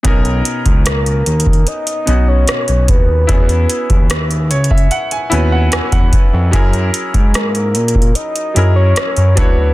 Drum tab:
HH |x--x--x--x--x--x--x-x-x-x--x--x-----x--x--x-----|x--x--x--x--x--x--x-x-x-x--x--x-----x--x--x-----|x--x--x--x--x--x--x-x-x-x--x--x-----x--x--x-----|
SD |------------r-----------------------r-----------|------------r-----------------------r-----------|------------r-----------------------r-----------|
BD |o--------o-----------o--------------------o-----|o--------o-----------o-----------------o--o-----|o--------o-----------o--------------------o-----|